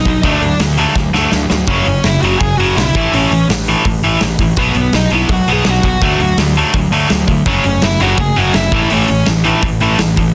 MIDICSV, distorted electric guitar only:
0, 0, Header, 1, 2, 480
1, 0, Start_track
1, 0, Key_signature, 3, "major"
1, 0, Tempo, 361228
1, 315, Time_signature, 4, 2, 24, 8
1, 13741, End_track
2, 0, Start_track
2, 0, Title_t, "Distorted electric guitar"
2, 0, Program_c, 0, 30
2, 82, Note_on_c, 0, 47, 67
2, 96, Note_on_c, 0, 54, 74
2, 295, Note_off_c, 0, 47, 0
2, 302, Note_off_c, 0, 54, 0
2, 317, Note_on_c, 0, 50, 79
2, 326, Note_on_c, 0, 54, 96
2, 343, Note_on_c, 0, 57, 96
2, 542, Note_off_c, 0, 50, 0
2, 543, Note_off_c, 0, 54, 0
2, 555, Note_off_c, 0, 57, 0
2, 558, Note_on_c, 0, 50, 73
2, 559, Note_on_c, 0, 54, 77
2, 772, Note_off_c, 0, 50, 0
2, 773, Note_off_c, 0, 54, 0
2, 794, Note_on_c, 0, 54, 72
2, 797, Note_on_c, 0, 50, 73
2, 1010, Note_off_c, 0, 54, 0
2, 1012, Note_off_c, 0, 50, 0
2, 1030, Note_on_c, 0, 50, 84
2, 1039, Note_on_c, 0, 54, 88
2, 1047, Note_on_c, 0, 57, 93
2, 1258, Note_off_c, 0, 50, 0
2, 1262, Note_off_c, 0, 54, 0
2, 1266, Note_off_c, 0, 57, 0
2, 1274, Note_on_c, 0, 50, 71
2, 1281, Note_on_c, 0, 54, 72
2, 1490, Note_off_c, 0, 50, 0
2, 1494, Note_off_c, 0, 54, 0
2, 1506, Note_on_c, 0, 50, 77
2, 1519, Note_on_c, 0, 54, 83
2, 1532, Note_on_c, 0, 57, 91
2, 1724, Note_off_c, 0, 50, 0
2, 1737, Note_off_c, 0, 54, 0
2, 1740, Note_on_c, 0, 50, 70
2, 1749, Note_off_c, 0, 57, 0
2, 1753, Note_on_c, 0, 54, 75
2, 1963, Note_off_c, 0, 50, 0
2, 1970, Note_off_c, 0, 54, 0
2, 1988, Note_on_c, 0, 50, 63
2, 1992, Note_on_c, 0, 54, 73
2, 2207, Note_off_c, 0, 50, 0
2, 2209, Note_off_c, 0, 54, 0
2, 2234, Note_on_c, 0, 42, 91
2, 2249, Note_on_c, 0, 49, 87
2, 2250, Note_on_c, 0, 54, 95
2, 2460, Note_off_c, 0, 42, 0
2, 2467, Note_off_c, 0, 49, 0
2, 2468, Note_off_c, 0, 54, 0
2, 2488, Note_on_c, 0, 42, 70
2, 2493, Note_on_c, 0, 49, 70
2, 2697, Note_off_c, 0, 42, 0
2, 2700, Note_off_c, 0, 49, 0
2, 2742, Note_on_c, 0, 42, 72
2, 2743, Note_on_c, 0, 49, 74
2, 2944, Note_off_c, 0, 42, 0
2, 2945, Note_off_c, 0, 49, 0
2, 2975, Note_on_c, 0, 42, 81
2, 2980, Note_on_c, 0, 49, 93
2, 2986, Note_on_c, 0, 54, 87
2, 3191, Note_off_c, 0, 42, 0
2, 3193, Note_off_c, 0, 49, 0
2, 3196, Note_off_c, 0, 54, 0
2, 3207, Note_on_c, 0, 42, 67
2, 3212, Note_on_c, 0, 49, 81
2, 3417, Note_off_c, 0, 42, 0
2, 3419, Note_off_c, 0, 49, 0
2, 3449, Note_on_c, 0, 42, 83
2, 3449, Note_on_c, 0, 49, 91
2, 3463, Note_on_c, 0, 54, 82
2, 3667, Note_off_c, 0, 42, 0
2, 3667, Note_off_c, 0, 49, 0
2, 3675, Note_off_c, 0, 54, 0
2, 3694, Note_on_c, 0, 42, 75
2, 3702, Note_on_c, 0, 49, 87
2, 3900, Note_off_c, 0, 42, 0
2, 3905, Note_off_c, 0, 49, 0
2, 3929, Note_on_c, 0, 45, 86
2, 3939, Note_on_c, 0, 52, 85
2, 3946, Note_on_c, 0, 57, 88
2, 4148, Note_off_c, 0, 45, 0
2, 4153, Note_off_c, 0, 52, 0
2, 4156, Note_off_c, 0, 57, 0
2, 4169, Note_on_c, 0, 45, 82
2, 4177, Note_on_c, 0, 52, 91
2, 4190, Note_on_c, 0, 57, 102
2, 4375, Note_off_c, 0, 45, 0
2, 4387, Note_off_c, 0, 52, 0
2, 4391, Note_on_c, 0, 45, 68
2, 4399, Note_off_c, 0, 57, 0
2, 4403, Note_on_c, 0, 52, 75
2, 4609, Note_off_c, 0, 45, 0
2, 4615, Note_off_c, 0, 52, 0
2, 4649, Note_on_c, 0, 45, 67
2, 4666, Note_on_c, 0, 52, 70
2, 4858, Note_off_c, 0, 45, 0
2, 4867, Note_off_c, 0, 52, 0
2, 4892, Note_on_c, 0, 45, 77
2, 4895, Note_on_c, 0, 52, 92
2, 4912, Note_on_c, 0, 57, 90
2, 5109, Note_off_c, 0, 45, 0
2, 5111, Note_off_c, 0, 52, 0
2, 5119, Note_off_c, 0, 57, 0
2, 5130, Note_on_c, 0, 45, 69
2, 5136, Note_on_c, 0, 52, 75
2, 5339, Note_off_c, 0, 45, 0
2, 5342, Note_off_c, 0, 52, 0
2, 5361, Note_on_c, 0, 45, 80
2, 5373, Note_on_c, 0, 52, 97
2, 5384, Note_on_c, 0, 57, 95
2, 5584, Note_off_c, 0, 45, 0
2, 5590, Note_off_c, 0, 52, 0
2, 5596, Note_off_c, 0, 57, 0
2, 5607, Note_on_c, 0, 45, 73
2, 5620, Note_on_c, 0, 52, 86
2, 5817, Note_off_c, 0, 45, 0
2, 5824, Note_off_c, 0, 52, 0
2, 5855, Note_on_c, 0, 45, 62
2, 5859, Note_on_c, 0, 52, 78
2, 6061, Note_off_c, 0, 45, 0
2, 6063, Note_off_c, 0, 52, 0
2, 6091, Note_on_c, 0, 47, 92
2, 6105, Note_on_c, 0, 54, 93
2, 6113, Note_on_c, 0, 59, 99
2, 6309, Note_off_c, 0, 47, 0
2, 6316, Note_off_c, 0, 54, 0
2, 6320, Note_off_c, 0, 59, 0
2, 6327, Note_on_c, 0, 47, 65
2, 6342, Note_on_c, 0, 54, 72
2, 6537, Note_off_c, 0, 47, 0
2, 6545, Note_off_c, 0, 54, 0
2, 6569, Note_on_c, 0, 47, 69
2, 6571, Note_on_c, 0, 54, 82
2, 6778, Note_off_c, 0, 47, 0
2, 6779, Note_off_c, 0, 54, 0
2, 6791, Note_on_c, 0, 47, 80
2, 6807, Note_on_c, 0, 54, 83
2, 6812, Note_on_c, 0, 59, 94
2, 7019, Note_off_c, 0, 47, 0
2, 7027, Note_off_c, 0, 54, 0
2, 7029, Note_off_c, 0, 59, 0
2, 7035, Note_on_c, 0, 47, 68
2, 7043, Note_on_c, 0, 54, 81
2, 7251, Note_off_c, 0, 47, 0
2, 7255, Note_off_c, 0, 54, 0
2, 7280, Note_on_c, 0, 47, 83
2, 7294, Note_on_c, 0, 54, 86
2, 7299, Note_on_c, 0, 59, 101
2, 7503, Note_off_c, 0, 47, 0
2, 7510, Note_off_c, 0, 54, 0
2, 7513, Note_off_c, 0, 59, 0
2, 7527, Note_on_c, 0, 47, 74
2, 7538, Note_on_c, 0, 54, 86
2, 7737, Note_off_c, 0, 47, 0
2, 7742, Note_off_c, 0, 54, 0
2, 7765, Note_on_c, 0, 47, 70
2, 7770, Note_on_c, 0, 54, 72
2, 7976, Note_off_c, 0, 47, 0
2, 7978, Note_off_c, 0, 54, 0
2, 7997, Note_on_c, 0, 50, 88
2, 8008, Note_on_c, 0, 54, 88
2, 8013, Note_on_c, 0, 57, 95
2, 8221, Note_off_c, 0, 50, 0
2, 8227, Note_off_c, 0, 54, 0
2, 8229, Note_off_c, 0, 57, 0
2, 8246, Note_on_c, 0, 50, 69
2, 8253, Note_on_c, 0, 54, 70
2, 8456, Note_off_c, 0, 50, 0
2, 8460, Note_off_c, 0, 54, 0
2, 8490, Note_on_c, 0, 50, 61
2, 8499, Note_on_c, 0, 54, 69
2, 8698, Note_off_c, 0, 50, 0
2, 8703, Note_off_c, 0, 54, 0
2, 8729, Note_on_c, 0, 50, 83
2, 8738, Note_on_c, 0, 54, 99
2, 8746, Note_on_c, 0, 57, 92
2, 8947, Note_off_c, 0, 50, 0
2, 8952, Note_off_c, 0, 54, 0
2, 8956, Note_off_c, 0, 57, 0
2, 8969, Note_on_c, 0, 50, 64
2, 8984, Note_on_c, 0, 54, 73
2, 9177, Note_off_c, 0, 50, 0
2, 9185, Note_off_c, 0, 54, 0
2, 9196, Note_on_c, 0, 50, 92
2, 9211, Note_on_c, 0, 54, 85
2, 9213, Note_on_c, 0, 57, 100
2, 9420, Note_off_c, 0, 50, 0
2, 9425, Note_off_c, 0, 54, 0
2, 9429, Note_off_c, 0, 57, 0
2, 9437, Note_on_c, 0, 50, 70
2, 9441, Note_on_c, 0, 54, 81
2, 9651, Note_off_c, 0, 50, 0
2, 9653, Note_off_c, 0, 54, 0
2, 9667, Note_on_c, 0, 54, 74
2, 9668, Note_on_c, 0, 50, 70
2, 9886, Note_off_c, 0, 54, 0
2, 9887, Note_off_c, 0, 50, 0
2, 9914, Note_on_c, 0, 42, 79
2, 9926, Note_on_c, 0, 49, 90
2, 9937, Note_on_c, 0, 54, 97
2, 10139, Note_off_c, 0, 42, 0
2, 10145, Note_off_c, 0, 49, 0
2, 10151, Note_off_c, 0, 54, 0
2, 10158, Note_on_c, 0, 42, 64
2, 10169, Note_on_c, 0, 49, 74
2, 10372, Note_off_c, 0, 42, 0
2, 10377, Note_off_c, 0, 49, 0
2, 10419, Note_on_c, 0, 42, 68
2, 10426, Note_on_c, 0, 49, 76
2, 10622, Note_off_c, 0, 42, 0
2, 10626, Note_off_c, 0, 49, 0
2, 10641, Note_on_c, 0, 42, 77
2, 10650, Note_on_c, 0, 49, 78
2, 10662, Note_on_c, 0, 54, 95
2, 10854, Note_off_c, 0, 42, 0
2, 10862, Note_off_c, 0, 49, 0
2, 10870, Note_on_c, 0, 42, 64
2, 10873, Note_off_c, 0, 54, 0
2, 10878, Note_on_c, 0, 49, 76
2, 11088, Note_off_c, 0, 42, 0
2, 11091, Note_off_c, 0, 49, 0
2, 11113, Note_on_c, 0, 42, 94
2, 11124, Note_on_c, 0, 49, 87
2, 11128, Note_on_c, 0, 54, 85
2, 11339, Note_off_c, 0, 42, 0
2, 11344, Note_off_c, 0, 49, 0
2, 11346, Note_off_c, 0, 54, 0
2, 11370, Note_on_c, 0, 42, 81
2, 11378, Note_on_c, 0, 49, 84
2, 11578, Note_off_c, 0, 42, 0
2, 11582, Note_off_c, 0, 49, 0
2, 11598, Note_on_c, 0, 45, 85
2, 11602, Note_on_c, 0, 52, 91
2, 11613, Note_on_c, 0, 57, 82
2, 11812, Note_off_c, 0, 45, 0
2, 11817, Note_off_c, 0, 52, 0
2, 11828, Note_on_c, 0, 45, 88
2, 11829, Note_off_c, 0, 57, 0
2, 11833, Note_on_c, 0, 52, 90
2, 11845, Note_on_c, 0, 57, 96
2, 12052, Note_off_c, 0, 45, 0
2, 12059, Note_off_c, 0, 52, 0
2, 12065, Note_off_c, 0, 57, 0
2, 12068, Note_on_c, 0, 45, 69
2, 12074, Note_on_c, 0, 52, 74
2, 12284, Note_off_c, 0, 45, 0
2, 12290, Note_off_c, 0, 52, 0
2, 12300, Note_on_c, 0, 45, 74
2, 12315, Note_on_c, 0, 52, 71
2, 12523, Note_off_c, 0, 45, 0
2, 12531, Note_off_c, 0, 52, 0
2, 12541, Note_on_c, 0, 45, 85
2, 12560, Note_on_c, 0, 52, 87
2, 12570, Note_on_c, 0, 57, 104
2, 12773, Note_off_c, 0, 45, 0
2, 12783, Note_off_c, 0, 52, 0
2, 12788, Note_off_c, 0, 57, 0
2, 12807, Note_on_c, 0, 45, 79
2, 12814, Note_on_c, 0, 52, 77
2, 13017, Note_off_c, 0, 45, 0
2, 13021, Note_off_c, 0, 52, 0
2, 13037, Note_on_c, 0, 45, 86
2, 13040, Note_on_c, 0, 52, 92
2, 13054, Note_on_c, 0, 57, 103
2, 13262, Note_off_c, 0, 45, 0
2, 13263, Note_off_c, 0, 52, 0
2, 13271, Note_off_c, 0, 57, 0
2, 13276, Note_on_c, 0, 45, 72
2, 13285, Note_on_c, 0, 52, 87
2, 13492, Note_off_c, 0, 45, 0
2, 13496, Note_off_c, 0, 52, 0
2, 13525, Note_on_c, 0, 45, 72
2, 13535, Note_on_c, 0, 52, 72
2, 13737, Note_off_c, 0, 45, 0
2, 13741, Note_off_c, 0, 52, 0
2, 13741, End_track
0, 0, End_of_file